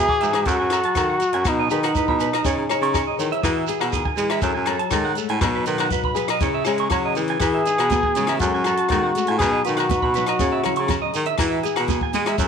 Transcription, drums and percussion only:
0.09 kick medium
0.20 closed hi-hat medium
0.20 shekere medium
0.33 cross-stick medium
0.33 closed hi-hat soft
0.33 low agogo medium
0.45 kick medium
0.45 closed hi-hat soft
0.45 shekere medium
0.70 cross-stick medium
0.70 closed hi-hat soft
0.70 low agogo medium
0.70 shekere medium
0.83 closed hi-hat soft
0.95 kick medium
0.95 cross-stick medium
0.95 closed hi-hat soft
0.95 low agogo medium
0.95 shekere medium
1.20 closed hi-hat soft
1.20 shekere medium
1.33 closed hi-hat soft
1.45 kick medium
1.45 cross-stick medium
1.45 closed hi-hat soft
1.45 low agogo medium
1.45 shekere medium
1.70 closed hi-hat soft
1.70 shekere medium
1.84 cross-stick medium
1.84 closed hi-hat soft
1.84 low agogo medium
1.95 kick medium
1.95 closed hi-hat soft
1.95 shekere medium
2.08 kick medium
2.20 closed hi-hat soft
2.20 shekere medium
2.33 cross-stick medium
2.33 closed hi-hat soft
2.33 low agogo medium
2.45 kick medium
2.45 closed hi-hat soft
2.45 shekere medium
2.69 cross-stick medium
2.69 closed hi-hat soft
2.69 low agogo medium
2.69 shekere medium
2.83 closed hi-hat soft
2.94 kick medium
2.94 cross-stick medium
2.94 closed hi-hat soft
2.94 low agogo medium
2.94 shekere medium
3.19 closed hi-hat soft
3.19 shekere medium
3.32 closed hi-hat soft
3.43 kick medium
3.43 cross-stick medium
3.43 closed hi-hat soft
3.43 low agogo medium
3.43 shekere medium
3.68 closed hi-hat soft
3.68 shekere medium
3.81 cross-stick medium
3.81 closed hi-hat soft
3.81 low agogo medium
3.93 kick medium
3.93 closed hi-hat soft
3.93 shekere medium
4.05 kick medium
4.17 closed hi-hat soft
4.17 shekere medium
4.30 cross-stick medium
4.30 closed hi-hat medium
4.30 low agogo medium
4.42 kick medium
4.42 closed hi-hat soft
4.42 shekere medium
4.66 cross-stick medium
4.66 closed hi-hat medium
4.66 low agogo medium
4.79 closed hi-hat soft
4.91 kick medium
4.91 cross-stick medium
4.91 closed hi-hat soft
4.91 low agogo medium
4.91 shekere medium
5.15 closed hi-hat soft
5.15 shekere medium
5.29 closed hi-hat soft
5.41 kick medium
5.41 cross-stick medium
5.41 closed hi-hat soft
5.41 low agogo medium
5.41 shekere medium
5.66 closed hi-hat soft
5.66 shekere medium
5.78 cross-stick medium
5.78 closed hi-hat soft
5.78 low agogo medium
5.90 kick medium
5.90 closed hi-hat soft
5.90 shekere medium
6.04 kick medium
6.16 closed hi-hat soft
6.16 shekere medium
6.28 cross-stick medium
6.28 closed hi-hat soft
6.28 low agogo medium
6.40 kick medium
6.40 closed hi-hat soft
6.40 shekere medium
6.65 cross-stick medium
6.65 closed hi-hat soft
6.65 low agogo medium
6.65 shekere medium
6.78 closed hi-hat soft
6.90 kick medium
6.90 cross-stick medium
6.90 closed hi-hat soft
6.90 low agogo medium
6.90 shekere medium
7.15 closed hi-hat soft
7.15 shekere medium
7.27 closed hi-hat soft
7.40 kick medium
7.40 cross-stick medium
7.40 closed hi-hat soft
7.40 muted conga soft
7.40 low agogo medium
7.40 shekere medium
7.65 closed hi-hat soft
7.65 shekere medium
7.78 cross-stick medium
7.78 closed hi-hat soft
7.78 low agogo medium
7.89 kick medium
7.89 closed hi-hat soft
7.89 muted conga soft
7.89 high conga medium
7.89 shekere medium
8.03 kick medium
8.15 closed hi-hat soft
8.15 shekere medium
8.27 cross-stick medium
8.27 closed hi-hat medium
8.27 low agogo medium
8.39 kick medium
8.39 closed hi-hat soft
8.39 shekere medium
8.64 cross-stick medium
8.64 closed hi-hat soft
8.64 muted conga soft
8.64 low agogo medium
8.64 shekere medium
8.77 closed hi-hat soft
8.89 kick medium
8.89 cross-stick medium
8.89 closed hi-hat soft
8.89 high conga medium
8.89 low agogo medium
8.89 shekere medium
9.15 closed hi-hat soft
9.15 shekere medium
9.27 closed hi-hat soft
9.39 kick medium
9.39 cross-stick medium
9.39 closed hi-hat medium
9.39 muted conga soft
9.39 low agogo medium
9.39 shekere medium
9.64 closed hi-hat soft
9.64 shekere medium
9.77 cross-stick medium
9.77 closed hi-hat soft
9.77 low agogo medium
9.89 kick medium
9.89 closed hi-hat soft
9.89 muted conga soft
9.89 high conga medium
9.89 shekere medium
10.02 kick medium
10.14 closed hi-hat soft
10.14 shekere medium
10.26 cross-stick medium
10.26 closed hi-hat medium
10.26 low agogo medium
10.39 kick medium
10.39 closed hi-hat soft
10.39 muted conga soft
10.39 high conga soft
10.39 shekere medium
10.64 cross-stick medium
10.64 closed hi-hat soft
10.64 muted conga soft
10.64 low conga soft
10.64 low agogo medium
10.76 closed hi-hat soft
10.88 kick medium
10.88 cross-stick medium
10.88 closed hi-hat soft
10.88 high conga medium
10.88 low conga medium
10.88 low agogo medium
10.88 shekere medium
11.13 closed hi-hat soft
11.13 shekere medium
11.26 closed hi-hat soft
11.38 kick medium
11.38 cross-stick medium
11.38 closed hi-hat soft
11.38 muted conga soft
11.38 low agogo medium
11.38 shekere medium
11.63 closed hi-hat soft
11.63 shekere medium
11.76 cross-stick medium
11.76 closed hi-hat soft
11.76 low agogo medium
11.88 kick medium
11.88 closed hi-hat soft
11.88 muted conga soft
11.88 high conga medium
11.88 shekere medium
12.01 kick medium
12.13 closed hi-hat soft
12.13 high conga medium
12.13 shekere medium
12.26 cross-stick medium
12.26 closed hi-hat soft
12.26 low agogo medium
12.38 kick medium
12.38 closed hi-hat soft
12.38 muted conga soft
12.38 shekere medium

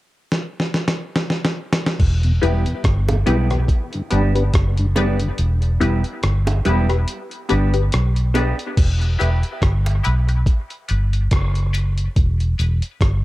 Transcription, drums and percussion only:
0.32 snare medium
0.60 snare medium
0.74 snare medium
0.88 snare medium
1.16 snare medium
1.30 snare medium
1.45 snare medium
1.73 snare loud
1.86 snare medium
2.00 kick medium
2.00 crash medium
2.23 closed hi-hat soft
2.43 closed hi-hat medium
2.66 closed hi-hat medium
2.84 kick loud
2.84 cross-stick loud
2.84 closed hi-hat medium
3.08 closed hi-hat medium
3.08 high bongo medium
3.27 closed hi-hat medium
3.27 low bongo medium
3.50 cross-stick medium
3.50 closed hi-hat soft
3.68 kick loud
3.68 closed hi-hat medium
3.93 closed hi-hat soft
4.11 closed hi-hat medium
4.36 closed hi-hat medium
4.54 kick loud
4.54 cross-stick loud
4.54 closed hi-hat medium
4.77 closed hi-hat medium
4.96 closed hi-hat medium
4.96 high bongo medium
4.96 low bongo medium
5.20 closed hi-hat medium
5.38 closed hi-hat medium
5.62 closed hi-hat soft
5.81 closed hi-hat medium
6.04 closed hi-hat soft
6.23 cross-stick loud
6.23 closed hi-hat medium
6.47 closed hi-hat medium
6.47 high bongo medium
6.65 closed hi-hat medium
6.65 low bongo medium
6.90 cross-stick medium
6.90 closed hi-hat soft
7.08 closed hi-hat medium
7.31 closed hi-hat soft
7.49 closed hi-hat medium
7.74 closed hi-hat soft
7.92 cross-stick loud
7.92 closed hi-hat medium
8.16 closed hi-hat medium
8.35 closed hi-hat medium
8.35 high bongo medium
8.35 low bongo medium
8.59 closed hi-hat medium
8.77 kick loud
8.77 closed hi-hat medium
8.77 crash medium
9.02 closed hi-hat medium
9.21 closed hi-hat medium
9.21 high bongo soft
9.43 closed hi-hat medium
9.62 kick loud
9.62 cross-stick loud
9.62 closed hi-hat medium
9.86 closed hi-hat medium
9.86 high bongo medium
10.04 closed hi-hat medium
10.04 low bongo medium
10.29 closed hi-hat soft
10.46 kick loud
10.46 closed hi-hat medium
10.70 closed hi-hat soft
10.89 closed hi-hat medium
11.13 closed hi-hat medium
11.31 kick loud
11.31 cross-stick loud
11.31 closed hi-hat medium
11.55 closed hi-hat medium
11.75 closed hi-hat medium
11.75 high bongo medium
11.75 low bongo medium
11.98 closed hi-hat medium
12.16 kick loud
12.16 closed hi-hat medium
12.40 closed hi-hat medium
12.60 closed hi-hat medium
12.60 high bongo soft
12.82 closed hi-hat medium
13.01 kick loud
13.01 cross-stick loud
13.01 closed hi-hat medium

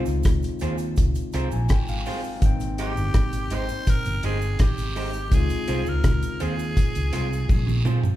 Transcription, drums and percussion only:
0.06 closed hi-hat soft
0.06 cabasa medium
0.23 kick loud
0.23 cross-stick medium
0.23 closed hi-hat medium
0.23 cabasa medium
0.42 closed hi-hat soft
0.42 cabasa soft
0.59 closed hi-hat medium
0.59 cabasa medium
0.78 closed hi-hat soft
0.78 cabasa medium
0.96 kick loud
0.96 closed hi-hat medium
0.96 cabasa medium
1.15 closed hi-hat medium
1.15 cabasa medium
1.32 closed hi-hat medium
1.32 cabasa soft
1.51 cabasa medium
1.69 kick loud
1.69 cross-stick loud
1.69 closed hi-hat medium
1.69 cabasa medium
1.69 long guiro medium
1.88 closed hi-hat soft
1.88 cabasa medium
2.06 open hi-hat medium
2.06 cabasa medium
2.24 cabasa medium
2.42 kick loud
2.42 closed hi-hat medium
2.42 cabasa medium
2.60 closed hi-hat medium
2.60 cabasa medium
2.78 closed hi-hat medium
2.78 cabasa medium
2.97 cabasa medium
3.14 kick loud
3.14 cross-stick loud
3.14 closed hi-hat medium
3.14 cabasa medium
3.33 closed hi-hat medium
3.33 cabasa medium
3.50 closed hi-hat medium
3.50 cabasa soft
3.69 closed hi-hat soft
3.69 cabasa medium
3.86 kick loud
3.86 closed hi-hat loud
3.86 cabasa medium
4.05 closed hi-hat medium
4.05 cabasa medium
4.23 closed hi-hat medium
4.23 cabasa soft
4.42 cabasa medium
4.59 kick loud
4.59 cross-stick loud
4.59 closed hi-hat medium
4.59 cabasa medium
4.59 long guiro medium
4.78 closed hi-hat soft
4.78 cabasa medium
4.96 open hi-hat medium
4.96 cabasa soft
5.13 closed hi-hat soft
5.13 cabasa medium
5.32 kick loud
5.32 closed hi-hat medium
5.32 cabasa medium
5.50 closed hi-hat medium
5.50 cabasa medium
5.68 closed hi-hat medium
5.68 cabasa soft
5.86 cabasa medium
6.04 kick loud
6.04 cross-stick loud
6.04 closed hi-hat medium
6.04 cabasa medium
6.23 closed hi-hat medium
6.23 cabasa medium
6.40 closed hi-hat medium
6.40 cabasa medium
6.59 cabasa medium
6.77 kick loud
6.77 closed hi-hat medium
6.77 cabasa medium
6.95 closed hi-hat medium
6.95 cabasa medium
7.13 closed hi-hat medium
7.13 cabasa soft
7.33 cabasa medium
7.49 kick loud
7.49 high tom medium
7.49 cabasa medium
7.49 long guiro medium
7.67 mid tom medium
7.67 cabasa medium
7.85 mid tom medium
7.85 cabasa medium
8.03 floor tom medium
8.03 cabasa medium

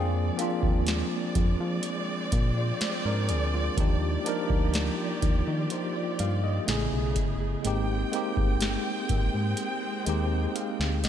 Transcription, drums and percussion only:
0.39 closed hi-hat medium
0.63 kick loud
0.87 snare loud
0.87 closed hi-hat medium
1.35 kick loud
1.35 closed hi-hat medium
1.83 closed hi-hat medium
2.32 kick loud
2.32 closed hi-hat medium
2.81 snare loud
2.81 closed hi-hat medium
3.29 closed hi-hat medium
3.77 kick loud
3.77 closed hi-hat medium
4.26 closed hi-hat medium
4.50 kick loud
4.74 snare loud
4.74 closed hi-hat medium
5.22 kick loud
5.22 closed hi-hat medium
5.70 closed hi-hat medium
6.19 closed hi-hat medium
6.68 snare loud
6.68 closed hi-hat medium
7.16 kick medium
7.16 closed hi-hat medium
7.65 closed hi-hat medium
8.13 closed hi-hat medium
8.37 kick loud
8.61 snare loud
8.61 closed hi-hat medium
9.09 kick loud
9.09 closed hi-hat medium
9.57 closed hi-hat medium
10.06 closed hi-hat medium
10.56 closed hi-hat medium
10.81 snare medium
11.04 snare loud
11.04 closed hi-hat medium

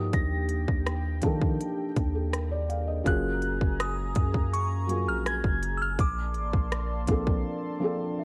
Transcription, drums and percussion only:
0.13 kick loud
0.13 closed hi-hat medium
0.49 closed hi-hat medium
0.68 kick medium
0.86 cross-stick loud
0.86 closed hi-hat medium
1.22 kick medium
1.22 closed hi-hat medium
1.41 kick loud
1.61 closed hi-hat medium
1.96 kick medium
1.96 closed hi-hat medium
2.33 cross-stick loud
2.33 closed hi-hat medium
2.70 closed hi-hat medium
3.06 kick loud
3.06 closed hi-hat medium
3.42 closed hi-hat medium
3.61 kick medium
3.80 cross-stick loud
3.80 closed hi-hat medium
4.15 kick medium
4.15 closed hi-hat medium
4.34 kick loud
4.54 closed hi-hat medium
4.89 closed hi-hat medium
5.26 cross-stick loud
5.26 closed hi-hat medium
5.44 kick medium
5.63 closed hi-hat medium
5.99 kick loud
5.99 closed hi-hat medium
6.34 closed hi-hat medium
6.54 kick medium
6.72 cross-stick loud
6.72 closed hi-hat medium
7.07 kick medium
7.07 closed hi-hat medium
7.27 kick medium

